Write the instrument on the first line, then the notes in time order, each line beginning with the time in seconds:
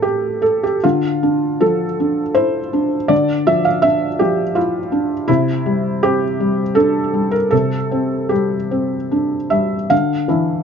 felt piano
Already playing: A2 G3 C4 E4 A4 A#4
0.02 G4
0.42 A4
0.63 G4
0.84 D3 F4
1.23 D4
1.61 F3 A4
2.00 D4
2.35 E4 C5
2.73 D4
3.08 D3 D5
3.47 F3 E5
3.65 F5
3.82 D4 E5
4.19 F3 G4
4.55 E4 F4
4.92 D4
5.28 C3 E4
5.66 G3
6.03 C4 G4
6.40 G3
6.75 D4 A4
7.14 G3
7.31 A#4
7.51 C3 A4
7.91 C4
8.29 G3 G4
8.71 C4
9.11 D4
9.50 G3 E5
9.90 D3 F5
10.28 E3 D4 E4